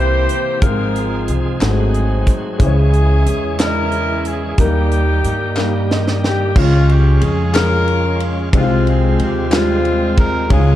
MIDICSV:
0, 0, Header, 1, 6, 480
1, 0, Start_track
1, 0, Tempo, 658617
1, 457, Time_signature, 6, 3, 24, 8
1, 7838, End_track
2, 0, Start_track
2, 0, Title_t, "Horn section"
2, 0, Program_c, 0, 61
2, 0, Note_on_c, 0, 64, 68
2, 0, Note_on_c, 0, 67, 76
2, 0, Note_on_c, 0, 72, 102
2, 428, Note_off_c, 0, 64, 0
2, 430, Note_off_c, 0, 67, 0
2, 451, Note_on_c, 0, 70, 83
2, 452, Note_off_c, 0, 72, 0
2, 460, Note_on_c, 0, 65, 58
2, 906, Note_off_c, 0, 70, 0
2, 1151, Note_off_c, 0, 65, 0
2, 1178, Note_on_c, 0, 63, 62
2, 1178, Note_on_c, 0, 68, 90
2, 1180, Note_on_c, 0, 60, 65
2, 1690, Note_off_c, 0, 68, 0
2, 1870, Note_off_c, 0, 63, 0
2, 1871, Note_off_c, 0, 60, 0
2, 1902, Note_on_c, 0, 68, 99
2, 1904, Note_on_c, 0, 64, 67
2, 1906, Note_on_c, 0, 61, 72
2, 2592, Note_off_c, 0, 68, 0
2, 2593, Note_off_c, 0, 64, 0
2, 2594, Note_off_c, 0, 61, 0
2, 2623, Note_on_c, 0, 70, 105
2, 2625, Note_on_c, 0, 61, 79
2, 2628, Note_on_c, 0, 64, 76
2, 3102, Note_off_c, 0, 70, 0
2, 3104, Note_on_c, 0, 68, 80
2, 3314, Note_off_c, 0, 61, 0
2, 3316, Note_off_c, 0, 64, 0
2, 3342, Note_off_c, 0, 68, 0
2, 3348, Note_on_c, 0, 63, 64
2, 3349, Note_on_c, 0, 67, 82
2, 3351, Note_on_c, 0, 58, 62
2, 4275, Note_off_c, 0, 63, 0
2, 4277, Note_off_c, 0, 58, 0
2, 4305, Note_off_c, 0, 67, 0
2, 4553, Note_on_c, 0, 67, 75
2, 4770, Note_off_c, 0, 67, 0
2, 4785, Note_on_c, 0, 56, 74
2, 4789, Note_on_c, 0, 61, 70
2, 4789, Note_on_c, 0, 65, 91
2, 5025, Note_off_c, 0, 65, 0
2, 5035, Note_on_c, 0, 67, 80
2, 5261, Note_on_c, 0, 68, 93
2, 5268, Note_off_c, 0, 67, 0
2, 5473, Note_off_c, 0, 56, 0
2, 5475, Note_off_c, 0, 61, 0
2, 5501, Note_off_c, 0, 68, 0
2, 5508, Note_on_c, 0, 61, 70
2, 5508, Note_on_c, 0, 70, 110
2, 5510, Note_on_c, 0, 65, 78
2, 5984, Note_off_c, 0, 70, 0
2, 6194, Note_off_c, 0, 61, 0
2, 6195, Note_off_c, 0, 65, 0
2, 6233, Note_on_c, 0, 56, 64
2, 6236, Note_on_c, 0, 60, 73
2, 6251, Note_on_c, 0, 65, 83
2, 6460, Note_off_c, 0, 65, 0
2, 6482, Note_on_c, 0, 68, 75
2, 6710, Note_off_c, 0, 68, 0
2, 6724, Note_on_c, 0, 67, 84
2, 6916, Note_off_c, 0, 56, 0
2, 6918, Note_off_c, 0, 60, 0
2, 6935, Note_off_c, 0, 67, 0
2, 6948, Note_on_c, 0, 56, 69
2, 6948, Note_on_c, 0, 60, 67
2, 6957, Note_on_c, 0, 65, 103
2, 7427, Note_off_c, 0, 65, 0
2, 7433, Note_on_c, 0, 70, 96
2, 7633, Note_off_c, 0, 56, 0
2, 7633, Note_off_c, 0, 60, 0
2, 7649, Note_off_c, 0, 70, 0
2, 7668, Note_on_c, 0, 61, 78
2, 7670, Note_on_c, 0, 65, 78
2, 7670, Note_on_c, 0, 68, 95
2, 7838, Note_off_c, 0, 61, 0
2, 7838, Note_off_c, 0, 65, 0
2, 7838, Note_off_c, 0, 68, 0
2, 7838, End_track
3, 0, Start_track
3, 0, Title_t, "Upright piano"
3, 0, Program_c, 1, 0
3, 0, Control_c, 1, 64, 127
3, 0, Note_on_c, 1, 48, 59
3, 0, Note_on_c, 1, 58, 66
3, 0, Note_on_c, 1, 64, 54
3, 0, Note_on_c, 1, 67, 52
3, 0, Note_on_c, 1, 72, 68
3, 283, Note_off_c, 1, 58, 0
3, 286, Note_off_c, 1, 64, 0
3, 287, Note_off_c, 1, 67, 0
3, 288, Note_off_c, 1, 72, 0
3, 425, Note_off_c, 1, 48, 0
3, 451, Note_on_c, 1, 56, 73
3, 453, Note_on_c, 1, 65, 65
3, 454, Note_on_c, 1, 60, 69
3, 455, Note_on_c, 1, 44, 56
3, 457, Note_on_c, 1, 72, 79
3, 465, Control_c, 1, 64, 0
3, 612, Control_c, 1, 64, 127
3, 1004, Note_off_c, 1, 56, 0
3, 1005, Note_off_c, 1, 65, 0
3, 1006, Note_off_c, 1, 60, 0
3, 1007, Note_off_c, 1, 72, 0
3, 1148, Note_off_c, 1, 44, 0
3, 1171, Note_on_c, 1, 56, 57
3, 1176, Note_on_c, 1, 60, 55
3, 1177, Note_on_c, 1, 44, 61
3, 1181, Note_on_c, 1, 57, 70
3, 1183, Note_on_c, 1, 66, 59
3, 1187, Control_c, 1, 64, 0
3, 1332, Control_c, 1, 64, 127
3, 1725, Note_off_c, 1, 56, 0
3, 1727, Note_off_c, 1, 60, 0
3, 1730, Note_off_c, 1, 57, 0
3, 1731, Note_off_c, 1, 66, 0
3, 1870, Note_off_c, 1, 44, 0
3, 1883, Note_on_c, 1, 56, 73
3, 1889, Note_on_c, 1, 61, 72
3, 1891, Note_on_c, 1, 49, 56
3, 1892, Note_on_c, 1, 64, 62
3, 1897, Note_on_c, 1, 72, 64
3, 1909, Control_c, 1, 64, 0
3, 1942, Note_on_c, 1, 73, 81
3, 1946, Note_off_c, 1, 72, 0
3, 2038, Control_c, 1, 64, 127
3, 2441, Note_off_c, 1, 56, 0
3, 2444, Note_off_c, 1, 61, 0
3, 2446, Note_off_c, 1, 64, 0
3, 2471, Note_off_c, 1, 73, 0
3, 2587, Note_off_c, 1, 49, 0
3, 2618, Note_on_c, 1, 56, 60
3, 2619, Note_on_c, 1, 64, 57
3, 2620, Note_on_c, 1, 61, 62
3, 2626, Note_on_c, 1, 74, 57
3, 2670, Note_off_c, 1, 74, 0
3, 2672, Note_on_c, 1, 75, 66
3, 3169, Note_off_c, 1, 56, 0
3, 3169, Note_off_c, 1, 64, 0
3, 3170, Note_off_c, 1, 61, 0
3, 3196, Note_off_c, 1, 75, 0
3, 3338, Note_on_c, 1, 55, 75
3, 3344, Note_on_c, 1, 58, 66
3, 3345, Note_on_c, 1, 51, 58
3, 3347, Note_on_c, 1, 63, 66
3, 3351, Control_c, 1, 64, 0
3, 3351, Note_on_c, 1, 70, 90
3, 3497, Control_c, 1, 64, 127
3, 3889, Note_off_c, 1, 55, 0
3, 3892, Note_off_c, 1, 58, 0
3, 3893, Note_off_c, 1, 63, 0
3, 3896, Note_off_c, 1, 70, 0
3, 4034, Note_off_c, 1, 51, 0
3, 4055, Note_on_c, 1, 55, 72
3, 4057, Note_on_c, 1, 58, 68
3, 4058, Note_on_c, 1, 63, 69
3, 4064, Note_on_c, 1, 67, 83
3, 4314, Note_on_c, 1, 75, 67
3, 4531, Note_off_c, 1, 75, 0
3, 4545, Note_on_c, 1, 79, 62
3, 4607, Note_off_c, 1, 55, 0
3, 4608, Note_off_c, 1, 58, 0
3, 4609, Note_off_c, 1, 63, 0
3, 4612, Note_off_c, 1, 67, 0
3, 4766, Note_off_c, 1, 79, 0
3, 4779, Note_on_c, 1, 49, 62
3, 4779, Note_on_c, 1, 56, 77
3, 4782, Note_on_c, 1, 61, 73
3, 4789, Note_on_c, 1, 65, 79
3, 4791, Control_c, 1, 64, 0
3, 4934, Control_c, 1, 64, 127
3, 5329, Note_off_c, 1, 56, 0
3, 5330, Note_off_c, 1, 61, 0
3, 5334, Note_off_c, 1, 65, 0
3, 5470, Note_off_c, 1, 49, 0
3, 5492, Note_on_c, 1, 56, 66
3, 5497, Note_on_c, 1, 61, 55
3, 5501, Note_on_c, 1, 68, 75
3, 6045, Note_off_c, 1, 56, 0
3, 6048, Note_off_c, 1, 61, 0
3, 6050, Note_off_c, 1, 68, 0
3, 6219, Note_on_c, 1, 48, 73
3, 6220, Note_on_c, 1, 56, 84
3, 6220, Note_on_c, 1, 60, 78
3, 6227, Note_on_c, 1, 63, 77
3, 6228, Control_c, 1, 64, 0
3, 6271, Note_off_c, 1, 63, 0
3, 6276, Note_on_c, 1, 65, 95
3, 6361, Control_c, 1, 64, 127
3, 6768, Note_off_c, 1, 56, 0
3, 6769, Note_off_c, 1, 60, 0
3, 6796, Note_off_c, 1, 65, 0
3, 6909, Note_off_c, 1, 48, 0
3, 6921, Note_on_c, 1, 55, 52
3, 6927, Note_on_c, 1, 65, 82
3, 6928, Note_on_c, 1, 60, 62
3, 6972, Note_on_c, 1, 56, 66
3, 6977, Note_off_c, 1, 55, 0
3, 7482, Note_off_c, 1, 60, 0
3, 7482, Note_off_c, 1, 65, 0
3, 7504, Note_off_c, 1, 56, 0
3, 7649, Note_on_c, 1, 56, 87
3, 7651, Note_on_c, 1, 61, 82
3, 7652, Note_on_c, 1, 49, 69
3, 7657, Note_on_c, 1, 63, 69
3, 7666, Control_c, 1, 64, 0
3, 7699, Note_on_c, 1, 65, 84
3, 7705, Note_off_c, 1, 63, 0
3, 7791, Control_c, 1, 64, 127
3, 7838, Note_off_c, 1, 49, 0
3, 7838, Note_off_c, 1, 56, 0
3, 7838, Note_off_c, 1, 61, 0
3, 7838, Note_off_c, 1, 65, 0
3, 7838, End_track
4, 0, Start_track
4, 0, Title_t, "Tonewheel organ"
4, 0, Program_c, 2, 16
4, 0, Note_on_c, 2, 52, 50
4, 0, Note_on_c, 2, 58, 47
4, 0, Note_on_c, 2, 60, 50
4, 0, Note_on_c, 2, 67, 59
4, 440, Note_off_c, 2, 60, 0
4, 441, Note_on_c, 2, 53, 64
4, 441, Note_on_c, 2, 68, 70
4, 448, Note_on_c, 2, 60, 60
4, 451, Note_on_c, 2, 56, 53
4, 453, Note_off_c, 2, 58, 0
4, 455, Note_off_c, 2, 67, 0
4, 457, Note_off_c, 2, 52, 0
4, 1168, Note_off_c, 2, 68, 0
4, 1170, Note_off_c, 2, 53, 0
4, 1173, Note_off_c, 2, 60, 0
4, 1175, Note_off_c, 2, 56, 0
4, 1177, Note_on_c, 2, 68, 59
4, 1178, Note_on_c, 2, 54, 57
4, 1182, Note_on_c, 2, 60, 52
4, 1899, Note_off_c, 2, 54, 0
4, 1899, Note_off_c, 2, 68, 0
4, 1900, Note_on_c, 2, 56, 55
4, 1900, Note_on_c, 2, 61, 63
4, 1901, Note_off_c, 2, 60, 0
4, 1902, Note_on_c, 2, 52, 62
4, 1905, Note_on_c, 2, 67, 56
4, 1950, Note_off_c, 2, 67, 0
4, 1951, Note_on_c, 2, 68, 66
4, 3312, Note_off_c, 2, 56, 0
4, 3312, Note_off_c, 2, 61, 0
4, 3313, Note_off_c, 2, 52, 0
4, 3338, Note_off_c, 2, 68, 0
4, 3349, Note_on_c, 2, 55, 60
4, 3350, Note_on_c, 2, 51, 56
4, 3353, Note_on_c, 2, 66, 52
4, 3354, Note_on_c, 2, 58, 54
4, 3394, Note_off_c, 2, 66, 0
4, 3397, Note_on_c, 2, 67, 65
4, 4756, Note_off_c, 2, 55, 0
4, 4757, Note_off_c, 2, 51, 0
4, 4759, Note_off_c, 2, 58, 0
4, 4778, Note_on_c, 2, 56, 62
4, 4781, Note_off_c, 2, 67, 0
4, 4782, Note_on_c, 2, 64, 56
4, 4785, Note_on_c, 2, 61, 59
4, 4823, Note_on_c, 2, 65, 71
4, 4829, Note_off_c, 2, 64, 0
4, 6190, Note_off_c, 2, 56, 0
4, 6193, Note_off_c, 2, 61, 0
4, 6203, Note_off_c, 2, 65, 0
4, 6212, Note_on_c, 2, 65, 71
4, 6218, Note_on_c, 2, 56, 66
4, 6220, Note_on_c, 2, 60, 65
4, 7625, Note_off_c, 2, 65, 0
4, 7628, Note_off_c, 2, 56, 0
4, 7629, Note_off_c, 2, 60, 0
4, 7632, Note_on_c, 2, 61, 71
4, 7635, Note_on_c, 2, 65, 77
4, 7641, Note_on_c, 2, 56, 64
4, 7838, Note_off_c, 2, 56, 0
4, 7838, Note_off_c, 2, 61, 0
4, 7838, Note_off_c, 2, 65, 0
4, 7838, End_track
5, 0, Start_track
5, 0, Title_t, "Upright bass"
5, 0, Program_c, 3, 32
5, 0, Note_on_c, 3, 36, 84
5, 184, Note_off_c, 3, 36, 0
5, 455, Note_on_c, 3, 32, 84
5, 908, Note_off_c, 3, 32, 0
5, 932, Note_on_c, 3, 36, 74
5, 1156, Note_off_c, 3, 36, 0
5, 1173, Note_on_c, 3, 32, 93
5, 1627, Note_off_c, 3, 32, 0
5, 1895, Note_on_c, 3, 37, 109
5, 2349, Note_off_c, 3, 37, 0
5, 2379, Note_on_c, 3, 40, 93
5, 3311, Note_off_c, 3, 40, 0
5, 3341, Note_on_c, 3, 39, 94
5, 3792, Note_off_c, 3, 39, 0
5, 3821, Note_on_c, 3, 43, 74
5, 4752, Note_off_c, 3, 43, 0
5, 4781, Note_on_c, 3, 37, 103
5, 5231, Note_off_c, 3, 37, 0
5, 5260, Note_on_c, 3, 41, 97
5, 6190, Note_off_c, 3, 41, 0
5, 6221, Note_on_c, 3, 36, 97
5, 6671, Note_off_c, 3, 36, 0
5, 6696, Note_on_c, 3, 39, 85
5, 7627, Note_off_c, 3, 39, 0
5, 7658, Note_on_c, 3, 37, 110
5, 7838, Note_off_c, 3, 37, 0
5, 7838, End_track
6, 0, Start_track
6, 0, Title_t, "Drums"
6, 210, Note_on_c, 9, 42, 60
6, 283, Note_off_c, 9, 42, 0
6, 449, Note_on_c, 9, 42, 90
6, 451, Note_on_c, 9, 36, 105
6, 521, Note_off_c, 9, 42, 0
6, 524, Note_off_c, 9, 36, 0
6, 696, Note_on_c, 9, 42, 49
6, 769, Note_off_c, 9, 42, 0
6, 931, Note_on_c, 9, 42, 63
6, 1004, Note_off_c, 9, 42, 0
6, 1173, Note_on_c, 9, 39, 84
6, 1177, Note_on_c, 9, 42, 83
6, 1183, Note_on_c, 9, 38, 106
6, 1246, Note_off_c, 9, 39, 0
6, 1250, Note_off_c, 9, 42, 0
6, 1256, Note_off_c, 9, 38, 0
6, 1415, Note_on_c, 9, 42, 43
6, 1488, Note_off_c, 9, 42, 0
6, 1651, Note_on_c, 9, 42, 60
6, 1654, Note_on_c, 9, 36, 74
6, 1724, Note_off_c, 9, 42, 0
6, 1726, Note_off_c, 9, 36, 0
6, 1892, Note_on_c, 9, 42, 92
6, 1893, Note_on_c, 9, 36, 101
6, 1965, Note_off_c, 9, 42, 0
6, 1966, Note_off_c, 9, 36, 0
6, 2138, Note_on_c, 9, 42, 49
6, 2211, Note_off_c, 9, 42, 0
6, 2378, Note_on_c, 9, 42, 65
6, 2450, Note_off_c, 9, 42, 0
6, 2618, Note_on_c, 9, 42, 89
6, 2620, Note_on_c, 9, 39, 79
6, 2623, Note_on_c, 9, 38, 123
6, 2691, Note_off_c, 9, 42, 0
6, 2693, Note_off_c, 9, 39, 0
6, 2696, Note_off_c, 9, 38, 0
6, 2854, Note_on_c, 9, 42, 40
6, 2927, Note_off_c, 9, 42, 0
6, 3096, Note_on_c, 9, 42, 59
6, 3169, Note_off_c, 9, 42, 0
6, 3336, Note_on_c, 9, 42, 97
6, 3339, Note_on_c, 9, 36, 99
6, 3409, Note_off_c, 9, 42, 0
6, 3412, Note_off_c, 9, 36, 0
6, 3581, Note_on_c, 9, 42, 47
6, 3654, Note_off_c, 9, 42, 0
6, 3820, Note_on_c, 9, 42, 65
6, 3893, Note_off_c, 9, 42, 0
6, 4055, Note_on_c, 9, 39, 82
6, 4066, Note_on_c, 9, 38, 59
6, 4127, Note_off_c, 9, 39, 0
6, 4139, Note_off_c, 9, 38, 0
6, 4309, Note_on_c, 9, 38, 73
6, 4382, Note_off_c, 9, 38, 0
6, 4428, Note_on_c, 9, 38, 66
6, 4501, Note_off_c, 9, 38, 0
6, 4550, Note_on_c, 9, 38, 78
6, 4623, Note_off_c, 9, 38, 0
6, 4780, Note_on_c, 9, 36, 103
6, 4780, Note_on_c, 9, 49, 106
6, 4853, Note_off_c, 9, 36, 0
6, 4853, Note_off_c, 9, 49, 0
6, 5024, Note_on_c, 9, 51, 45
6, 5097, Note_off_c, 9, 51, 0
6, 5258, Note_on_c, 9, 51, 69
6, 5331, Note_off_c, 9, 51, 0
6, 5497, Note_on_c, 9, 39, 101
6, 5505, Note_on_c, 9, 51, 86
6, 5510, Note_on_c, 9, 38, 127
6, 5570, Note_off_c, 9, 39, 0
6, 5577, Note_off_c, 9, 51, 0
6, 5583, Note_off_c, 9, 38, 0
6, 5739, Note_on_c, 9, 51, 42
6, 5812, Note_off_c, 9, 51, 0
6, 5978, Note_on_c, 9, 51, 61
6, 6050, Note_off_c, 9, 51, 0
6, 6218, Note_on_c, 9, 36, 106
6, 6221, Note_on_c, 9, 51, 89
6, 6291, Note_off_c, 9, 36, 0
6, 6293, Note_off_c, 9, 51, 0
6, 6463, Note_on_c, 9, 51, 43
6, 6536, Note_off_c, 9, 51, 0
6, 6701, Note_on_c, 9, 51, 60
6, 6774, Note_off_c, 9, 51, 0
6, 6937, Note_on_c, 9, 39, 85
6, 6940, Note_on_c, 9, 51, 80
6, 6946, Note_on_c, 9, 38, 127
6, 7010, Note_off_c, 9, 39, 0
6, 7013, Note_off_c, 9, 51, 0
6, 7019, Note_off_c, 9, 38, 0
6, 7178, Note_on_c, 9, 51, 42
6, 7251, Note_off_c, 9, 51, 0
6, 7414, Note_on_c, 9, 51, 62
6, 7417, Note_on_c, 9, 36, 87
6, 7487, Note_off_c, 9, 51, 0
6, 7490, Note_off_c, 9, 36, 0
6, 7653, Note_on_c, 9, 51, 82
6, 7656, Note_on_c, 9, 36, 111
6, 7726, Note_off_c, 9, 51, 0
6, 7729, Note_off_c, 9, 36, 0
6, 7838, End_track
0, 0, End_of_file